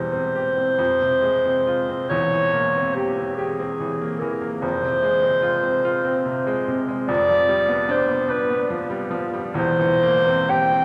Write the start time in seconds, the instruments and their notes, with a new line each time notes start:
Already playing: grand piano E1 E2 E3 G3, clarinet C5
0.12 grand piano C4
0.35 grand piano G4
0.57 grand piano C4
0.79 grand piano F2
1.01 grand piano C3
1.22 grand piano G#3
1.46 grand piano C4
1.67 grand piano F4
1.90 grand piano C4
2.09 grand piano E1 E2, clarinet C#5
2.34 grand piano E3
2.54 grand piano A#3
2.76 grand piano C4
2.95 clarinet G4, grand piano G4
3.18 grand piano C4
3.36 grand piano G4, clarinet G#4
3.59 grand piano C4
3.80 grand piano E3
4.02 grand piano A#3
4.20 grand piano E3, clarinet A#4
4.42 grand piano A#3
4.61 grand piano F1 F2, clarinet C5
4.83 grand piano C3
5.03 grand piano G#3
5.22 grand piano C4
5.42 grand piano F4
5.63 grand piano C4
5.85 grand piano F4
6.05 grand piano C4
6.25 grand piano C3
6.47 grand piano G#3
6.68 grand piano C3
6.88 grand piano G#3
7.07 grand piano F1 F2, clarinet D5
7.29 grand piano F3
7.49 grand piano G3
7.68 grand piano B3
7.89 grand piano D4, clarinet C5
8.08 grand piano B3
8.28 grand piano D4, clarinet B4
8.50 grand piano B3
8.70 grand piano F3
8.90 grand piano G3
9.11 grand piano F3
9.33 grand piano G3
9.54 grand piano E1 E2
9.58 clarinet C5
9.79 grand piano E3
10.03 grand piano A#3
10.27 grand piano C4
10.50 grand piano G4, clarinet G5
10.72 grand piano C4